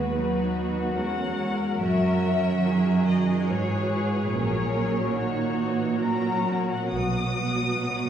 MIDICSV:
0, 0, Header, 1, 6, 480
1, 0, Start_track
1, 0, Tempo, 832178
1, 1050, Time_signature, 3, 2, 24, 8
1, 2961, Tempo, 862069
1, 3441, Tempo, 931677
1, 3921, Tempo, 858369
1, 4573, End_track
2, 0, Start_track
2, 0, Title_t, "Violin section"
2, 0, Program_c, 0, 48
2, 0, Note_on_c, 0, 71, 50
2, 304, Note_off_c, 0, 71, 0
2, 553, Note_on_c, 0, 78, 58
2, 1022, Note_off_c, 0, 78, 0
2, 1035, Note_on_c, 0, 76, 69
2, 1749, Note_off_c, 0, 76, 0
2, 1770, Note_on_c, 0, 75, 57
2, 2011, Note_on_c, 0, 73, 56
2, 2013, Note_off_c, 0, 75, 0
2, 2253, Note_on_c, 0, 71, 49
2, 2254, Note_off_c, 0, 73, 0
2, 2489, Note_off_c, 0, 71, 0
2, 2491, Note_on_c, 0, 70, 62
2, 3198, Note_off_c, 0, 70, 0
2, 3431, Note_on_c, 0, 82, 62
2, 3776, Note_off_c, 0, 82, 0
2, 3803, Note_on_c, 0, 78, 52
2, 3914, Note_on_c, 0, 87, 81
2, 3921, Note_off_c, 0, 78, 0
2, 4573, Note_off_c, 0, 87, 0
2, 4573, End_track
3, 0, Start_track
3, 0, Title_t, "Violin section"
3, 0, Program_c, 1, 48
3, 0, Note_on_c, 1, 66, 36
3, 0, Note_on_c, 1, 71, 34
3, 544, Note_off_c, 1, 71, 0
3, 572, Note_on_c, 1, 70, 41
3, 1046, Note_off_c, 1, 66, 0
3, 1053, Note_on_c, 1, 66, 34
3, 1521, Note_off_c, 1, 66, 0
3, 1528, Note_off_c, 1, 70, 0
3, 1534, Note_on_c, 1, 70, 37
3, 1535, Note_on_c, 1, 68, 41
3, 2007, Note_off_c, 1, 70, 0
3, 2023, Note_on_c, 1, 73, 38
3, 2481, Note_off_c, 1, 73, 0
3, 2488, Note_on_c, 1, 73, 42
3, 2950, Note_off_c, 1, 73, 0
3, 2963, Note_off_c, 1, 68, 0
3, 2963, Note_on_c, 1, 66, 42
3, 2965, Note_on_c, 1, 73, 38
3, 3432, Note_off_c, 1, 66, 0
3, 3433, Note_off_c, 1, 73, 0
3, 3436, Note_on_c, 1, 70, 39
3, 3438, Note_on_c, 1, 66, 42
3, 3910, Note_off_c, 1, 66, 0
3, 3918, Note_off_c, 1, 70, 0
3, 3919, Note_on_c, 1, 66, 41
3, 3920, Note_off_c, 1, 66, 0
3, 3920, Note_on_c, 1, 66, 47
3, 4573, Note_off_c, 1, 66, 0
3, 4573, End_track
4, 0, Start_track
4, 0, Title_t, "Viola section"
4, 0, Program_c, 2, 48
4, 0, Note_on_c, 2, 56, 36
4, 0, Note_on_c, 2, 59, 35
4, 73, Note_off_c, 2, 56, 0
4, 73, Note_off_c, 2, 59, 0
4, 82, Note_on_c, 2, 63, 37
4, 84, Note_on_c, 2, 54, 39
4, 316, Note_off_c, 2, 54, 0
4, 323, Note_on_c, 2, 54, 35
4, 559, Note_off_c, 2, 54, 0
4, 564, Note_off_c, 2, 63, 0
4, 564, Note_on_c, 2, 56, 37
4, 565, Note_on_c, 2, 61, 34
4, 1050, Note_off_c, 2, 56, 0
4, 1051, Note_off_c, 2, 61, 0
4, 1057, Note_on_c, 2, 54, 39
4, 1062, Note_on_c, 2, 61, 37
4, 1288, Note_off_c, 2, 54, 0
4, 1295, Note_on_c, 2, 51, 36
4, 1526, Note_off_c, 2, 61, 0
4, 1538, Note_on_c, 2, 66, 43
4, 1765, Note_off_c, 2, 66, 0
4, 1772, Note_on_c, 2, 66, 38
4, 2016, Note_off_c, 2, 51, 0
4, 2019, Note_on_c, 2, 52, 42
4, 2476, Note_off_c, 2, 66, 0
4, 2486, Note_on_c, 2, 61, 39
4, 2488, Note_on_c, 2, 54, 43
4, 2493, Note_off_c, 2, 52, 0
4, 2711, Note_off_c, 2, 54, 0
4, 2718, Note_on_c, 2, 54, 44
4, 2949, Note_off_c, 2, 61, 0
4, 2954, Note_off_c, 2, 54, 0
4, 2957, Note_on_c, 2, 51, 48
4, 2957, Note_on_c, 2, 63, 38
4, 3193, Note_on_c, 2, 52, 42
4, 3196, Note_off_c, 2, 51, 0
4, 3430, Note_on_c, 2, 61, 40
4, 3433, Note_on_c, 2, 54, 40
4, 3438, Note_off_c, 2, 52, 0
4, 3438, Note_off_c, 2, 63, 0
4, 3912, Note_off_c, 2, 54, 0
4, 3915, Note_off_c, 2, 61, 0
4, 3918, Note_on_c, 2, 54, 45
4, 3918, Note_on_c, 2, 59, 42
4, 4573, Note_off_c, 2, 54, 0
4, 4573, Note_off_c, 2, 59, 0
4, 4573, End_track
5, 0, Start_track
5, 0, Title_t, "Cello section"
5, 0, Program_c, 3, 48
5, 0, Note_on_c, 3, 39, 40
5, 545, Note_off_c, 3, 39, 0
5, 562, Note_on_c, 3, 40, 34
5, 1039, Note_off_c, 3, 40, 0
5, 1053, Note_on_c, 3, 42, 42
5, 1996, Note_off_c, 3, 42, 0
5, 2012, Note_on_c, 3, 44, 36
5, 2488, Note_on_c, 3, 46, 47
5, 2489, Note_off_c, 3, 44, 0
5, 3898, Note_off_c, 3, 46, 0
5, 3918, Note_on_c, 3, 47, 49
5, 4573, Note_off_c, 3, 47, 0
5, 4573, End_track
6, 0, Start_track
6, 0, Title_t, "Double bass section"
6, 0, Program_c, 4, 48
6, 0, Note_on_c, 4, 39, 32
6, 58, Note_off_c, 4, 39, 0
6, 1056, Note_on_c, 4, 30, 33
6, 1509, Note_off_c, 4, 30, 0
6, 2491, Note_on_c, 4, 34, 37
6, 2938, Note_off_c, 4, 34, 0
6, 3924, Note_on_c, 4, 35, 37
6, 4382, Note_off_c, 4, 35, 0
6, 4573, End_track
0, 0, End_of_file